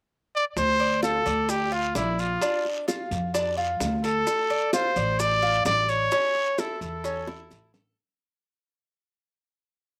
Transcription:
0.35 0.45 D5 medium
0.56 1.22 D2 medium
0.56 1.00 C5 loud
0.56 high bongo medium
0.56 long guiro medium
0.56 maracas medium
0.80 1.02 D5 medium
1.03 1.25 F4 medium
1.03 1.51 A4 medium
1.03 high bongo medium
1.03 short guiro medium
1.03 maracas medium
1.26 1.92 D2 medium
1.26 1.71 D5 medium
1.26 short guiro medium
1.26 maracas soft
1.49 1.73 G4 medium
1.49 high bongo medium
1.49 long guiro medium
1.49 maracas medium
1.72 1.94 F4 medium
1.72 1.95 F4 medium
1.95 2.36 A#1 medium
1.95 2.21 E4 medium
1.95 2.40 D5 medium
1.95 high bongo medium
1.95 low bongo medium
1.95 short guiro medium
1.95 maracas medium
2.19 2.65 F4 medium
2.19 short guiro medium
2.19 maracas soft
2.42 2.87 D4 medium
2.42 high bongo medium
2.42 long guiro medium
2.42 maracas medium
2.65 high bongo soft
2.88 3.33 F4 medium
2.88 high bongo medium
2.88 short guiro medium
2.88 maracas medium
3.11 3.77 F2 medium
3.11 high bongo soft
3.11 short guiro medium
3.11 maracas soft
3.34 3.57 D4 medium
3.34 high bongo medium
3.34 long guiro medium
3.34 maracas medium
3.57 4.02 F4 medium
3.80 4.21 D2 medium
3.80 high bongo medium
3.80 low bongo medium
3.80 short guiro medium
3.80 maracas medium
4.04 4.49 A4 medium
4.04 4.70 A4 medium
4.04 high bongo soft
4.04 short guiro medium
4.04 maracas soft
4.27 high bongo medium
4.27 long guiro medium
4.27 maracas medium
4.50 4.73 D5 medium
4.73 4.96 F4 medium
4.73 5.21 C5 medium
4.73 high bongo medium
4.73 short guiro medium
4.73 maracas medium
4.96 5.62 A1 medium
4.96 5.41 D5 medium
4.96 short guiro medium
4.96 maracas soft
5.19 5.65 D5 loud
5.19 high bongo medium
5.19 long guiro medium
5.19 maracas medium
5.42 5.65 F4 medium
5.65 6.06 A1 medium
5.65 6.11 D5 medium
5.65 5.91 D5 loud
5.65 high bongo medium
5.65 low bongo medium
5.65 short guiro medium
5.65 maracas medium
5.88 6.61 C#5 loud
5.88 short guiro medium
5.88 maracas soft
6.11 6.57 C#4 medium
6.11 high bongo medium
6.11 long guiro medium
6.11 maracas medium
6.35 high bongo soft
6.58 7.03 E4 medium
6.58 6.82 A4 medium
6.58 high bongo medium
6.58 short guiro medium
6.58 maracas medium
6.81 7.47 E2 medium
6.81 7.71 A4 medium
6.81 high bongo soft
6.81 short guiro medium
6.81 maracas soft
7.04 7.27 C#4 medium
7.04 high bongo medium
7.04 long guiro medium
7.04 maracas medium
7.27 7.73 E4 medium
7.27 high bongo loud
7.51 7.92 A1 medium
7.51 high bongo medium
7.51 short guiro medium
7.51 maracas medium
7.74 7.97 A4 medium
7.74 low bongo medium
7.74 short guiro medium
7.74 maracas soft

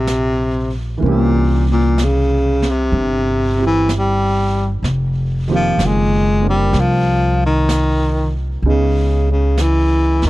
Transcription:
0.00 0.99 A#1 medium
0.00 1.00 A#2 soft
0.00 0.75 C3 medium
0.00 1.02 G3 soft
0.00 0.99 A#3 soft
0.00 1.05 D4 soft
0.00 1.06 F4 soft
0.07 brush sweep soft
0.07 snare soft
0.07 hi-hat pedal soft
0.98 4.81 E3 soft
0.98 4.83 A#3 soft
1.02 2.89 C2 medium
1.02 3.57 C4 soft
1.02 4.85 C#4 soft
1.02 brush sweep soft
1.08 1.67 A#2 medium
1.08 3.60 G4 medium
1.72 2.06 A#2 medium
1.98 brush sweep soft
1.98 snare soft
1.98 hi-hat pedal soft
2.04 2.72 C#3 medium
2.62 snare soft
2.70 3.62 C3 medium
2.92 4.79 G1 medium
2.92 brush sweep soft
3.58 4.84 C4 soft
3.58 4.84 E4 soft
3.58 4.85 G4 soft
3.67 3.91 E3 medium
3.89 brush sweep soft
3.89 snare soft
3.89 hi-hat pedal soft
3.99 4.70 G3 medium
4.83 5.74 F1 medium
4.83 brush sweep soft
4.83 snare soft
5.48 8.63 D#3 soft
5.48 8.64 F3 soft
5.48 6.40 A#3 soft
5.48 6.41 C4 soft
5.52 5.87 F3 medium
5.52 8.65 G4 medium
5.78 6.69 F#1 medium
5.78 brush sweep soft
5.78 snare soft
5.78 hi-hat pedal medium
5.86 6.47 G#3 medium
6.41 8.63 A#3 soft
6.41 8.64 C4 soft
6.41 8.64 D4 soft
6.41 8.65 A#4 soft
6.50 6.82 G3 medium
6.73 8.59 C2 medium
6.73 brush sweep soft
6.73 snare soft
6.80 7.42 F3 medium
7.46 8.33 D#3 medium
7.69 brush sweep soft
7.69 snare soft
7.69 hi-hat pedal soft
8.62 10.20 C#2 medium
8.62 10.30 C#3 soft
8.62 10.30 G#3 soft
8.62 10.30 B3 soft
8.62 10.30 C#4 soft
8.62 brush sweep soft
8.67 9.26 C#3 medium
8.67 10.30 D#4 soft
9.31 9.62 C#3 medium
9.58 10.25 E3 medium
9.58 brush sweep soft
9.58 snare soft
9.58 hi-hat pedal medium
10.22 10.30 E2 medium
10.22 snare soft
10.26 10.30 D#3 medium

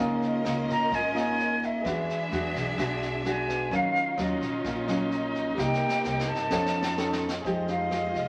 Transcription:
0.00 0.20 C#2 medium
0.00 0.89 C#3 medium
0.00 0.40 A#3 medium
0.00 1.83 C#4 medium
0.00 0.40 D#4 medium
0.00 0.41 F4 medium
0.00 1.83 F4 medium
0.00 1.78 G#4 medium
0.00 1.80 A#4 soft
0.00 1.83 A#4 medium
0.00 1.81 D#5 soft
0.00 1.83 D#5 medium
0.00 1.82 F5 medium
0.22 snare soft
0.45 0.66 C#2 medium
0.45 0.91 A#3 medium
0.45 0.91 D#4 medium
0.45 0.91 F4 medium
0.45 cross-stick medium
0.45 snare soft
0.68 0.90 G#1 medium
0.68 0.96 A#5 loud
0.68 kick soft
0.68 snare soft
0.92 1.81 G#1 medium
0.92 1.83 G#3 medium
0.92 1.16 G#5 medium
0.92 kick medium
0.92 snare soft
1.14 1.81 A#3 medium
1.14 1.81 D#4 medium
1.14 1.81 F4 medium
1.14 cross-stick medium
1.14 snare soft
1.19 1.66 G#5 medium
1.39 snare soft
1.62 2.56 E5 medium
1.62 kick soft
1.62 snare soft
1.81 3.70 D4 medium
1.81 3.43 G#4 soft
1.81 3.70 G#4 medium
1.81 3.44 B4 soft
1.81 3.45 D5 soft
1.81 3.70 E5 medium
1.85 2.07 E2 loud
1.85 2.76 E3 medium
1.85 2.28 G#3 medium
1.85 2.28 D4 medium
1.85 2.28 F#4 medium
1.85 3.46 F#5 soft
1.85 kick medium
1.85 cross-stick medium
1.85 snare soft
2.09 snare soft
2.32 2.53 E2 loud
2.32 2.74 G#3 medium
2.32 2.75 D4 medium
2.32 2.75 F#4 medium
2.32 snare soft
2.55 2.76 B1 medium
2.55 kick soft
2.55 snare soft
2.78 3.68 B1 medium
2.78 3.69 B2 medium
2.78 3.21 G#3 medium
2.78 3.21 D4 medium
2.78 3.21 F#4 medium
2.78 kick medium
2.78 cross-stick medium
2.78 snare soft
3.02 snare soft
3.25 3.70 G#3 medium
3.25 3.70 D4 medium
3.25 3.71 F#4 medium
3.25 3.77 G#5 medium
3.25 cross-stick medium
3.25 snare soft
3.47 3.71 G#4 soft
3.47 3.72 B4 soft
3.47 3.72 D5 soft
3.47 3.72 F#5 soft
3.47 kick soft
3.47 snare soft
3.70 3.93 D#2 loud
3.70 4.63 D#3 medium
3.70 4.15 F#3 medium
3.70 4.15 C#4 medium
3.70 5.57 C#4 medium
3.70 7.42 D#4 medium
3.70 4.15 F4 medium
3.70 5.58 F4 medium
3.70 5.54 A#4 soft
3.70 5.55 C#5 soft
3.70 kick medium
3.70 snare soft
3.74 5.56 F5 soft
3.74 4.23 F5 medium
3.95 snare soft
4.17 4.40 D#2 medium
4.17 4.85 F#3 medium
4.17 4.85 C#4 medium
4.17 4.85 F4 medium
4.17 4.66 D#5 medium
4.17 cross-stick medium
4.17 snare soft
4.41 4.63 A#1 medium
4.41 kick soft
4.41 snare soft
4.64 5.54 A#1 medium
4.64 5.56 A#2 medium
4.64 5.61 D#5 medium
4.64 kick medium
4.64 snare soft
4.88 5.55 F#3 medium
4.88 5.55 C#4 medium
4.88 5.55 F4 medium
4.88 cross-stick medium
4.88 snare soft
5.11 snare soft
5.34 kick soft
5.34 snare soft
5.55 5.80 C2 medium
5.55 6.49 C3 medium
5.55 6.21 A#3 medium
5.55 6.51 C4 medium
5.55 6.21 D#4 medium
5.55 6.48 G4 soft
5.55 6.51 G4 medium
5.55 6.49 A#4 soft
5.55 kick medium
5.55 snare soft
5.59 6.21 G4 medium
5.59 6.51 A#4 medium
5.59 6.50 D5 soft
5.59 6.51 D#5 soft
5.59 6.29 G5 medium
5.74 snare soft
5.89 snare soft
6.04 6.27 C2 loud
6.04 snare soft
6.19 snare medium
6.28 6.50 G2 medium
6.28 7.22 A5 loud
6.35 snare soft
6.48 7.41 F2 medium
6.48 7.43 F3 medium
6.48 7.44 C#4 medium
6.48 6.94 C#4 medium
6.48 6.95 D#4 soft
6.48 7.44 F4 medium
6.48 7.41 A4 soft
6.48 7.44 A4 medium
6.48 7.42 C5 soft
6.48 kick medium
6.48 snare medium
6.52 6.95 A4 medium
6.52 7.44 C#5 soft
6.52 7.43 D#5 medium
6.66 snare medium
6.82 snare medium
6.97 7.29 C#4 medium
6.97 7.29 D#4 medium
6.97 7.30 A4 medium
6.97 snare medium
7.13 snare medium
7.28 snare medium
7.41 8.11 F2 medium
7.41 8.28 G#4 medium
7.41 8.28 C5 soft
7.41 kick medium
7.41 snare soft
7.45 8.28 F3 medium
7.45 8.28 G#3 medium
7.45 7.65 G#3 medium
7.45 7.65 D#4 medium
7.45 8.28 F4 medium
7.45 7.65 G4 medium
7.45 8.28 D#5 soft
7.45 8.28 D#5 medium
7.45 8.28 G5 medium
7.68 7.88 G#3 medium
7.68 7.88 D#4 medium
7.68 7.88 G4 medium
7.68 8.28 F5 medium
7.68 snare soft
7.91 8.22 G#3 medium
7.91 8.22 D#4 medium
7.91 8.22 G4 medium
7.91 cross-stick medium
7.91 snare soft
8.15 8.28 C2 medium
8.15 kick soft
8.15 snare soft

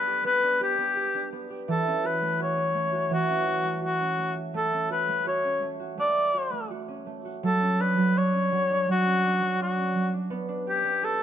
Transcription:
0.00 0.24 B3 medium
0.00 0.42 D4 medium
0.00 0.26 B4 medium
0.07 0.60 G4 medium
0.24 0.78 B3 medium
0.24 0.59 B4 loud
0.43 1.14 D4 medium
0.61 0.96 G4 medium
0.61 1.30 G4 medium
0.78 1.32 B3 medium
0.96 1.50 G4 medium
1.14 1.93 D4 medium
1.32 4.43 B3 medium
1.50 2.10 G4 medium
1.68 3.09 E3 medium
1.68 2.08 A4 medium
1.87 2.57 C#4 medium
2.04 2.40 F#4 soft
2.04 2.41 B4 medium
2.22 2.74 A3 medium
2.40 2.92 F#4 medium
2.40 3.09 C#5 medium
2.57 3.28 C#4 soft
2.75 3.64 A3 medium
2.92 3.46 F#4 medium
3.11 4.60 E3 medium
3.11 3.80 F#4 medium
3.29 4.00 C#4 medium
3.46 3.81 F#4 medium
3.65 4.18 A3 soft
3.82 4.36 F#4 medium
3.82 4.35 F#4 medium
4.01 4.72 C#4 medium
4.19 4.54 A3 soft
4.36 4.90 F#4 medium
4.54 5.08 A3 medium
4.54 4.89 A4 medium
4.73 5.44 C#4 medium
4.90 5.26 F#4 medium
4.90 5.25 B4 medium
5.09 5.62 A3 medium
5.26 5.79 F#4 medium
5.26 5.69 C#5 loud
5.44 6.88 C#4 medium
5.62 5.97 A3 medium
5.80 6.34 F#4 medium
5.98 6.52 A3 medium
5.98 6.68 D5 loud
6.34 6.70 F#4 medium
6.53 7.06 A3 soft
6.71 7.25 F#4 medium
6.88 7.61 C#4 medium
7.06 10.39 A3 medium
7.25 9.69 F#4 medium
7.43 7.96 F#3 medium
7.43 7.83 A4 medium
7.61 8.33 C#4 medium
7.79 8.15 D4 medium
7.79 8.19 B4 medium
7.97 8.51 F#3 soft
8.16 8.70 D4 medium
8.16 8.89 C#5 loud
8.33 9.06 C#4 medium
8.52 8.87 F#3 medium
8.70 9.23 D4 medium
8.88 9.41 F#3 medium
8.88 9.58 F#4 medium
9.06 9.77 C#4 medium
9.24 9.60 D4 medium
9.42 9.94 F#3 medium
9.60 10.13 D4 medium
9.60 10.11 F#4 medium
9.78 10.55 C#4 medium
9.95 10.37 F#3 medium
10.13 10.48 D4 medium
10.30 10.84 B3 medium
10.49 11.20 D4 medium
10.67 11.02 G4 medium
10.67 11.05 G4 medium
10.84 11.23 B3 medium
11.02 11.23 G4 medium
11.02 11.23 A4 medium

